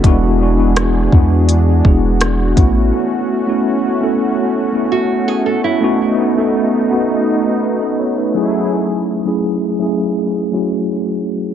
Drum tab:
HH |x-x-x-xx|--------|--------|--------|
SD |--r---r-|--------|--------|--------|
BD |o--o-o-o|--------|--------|--------|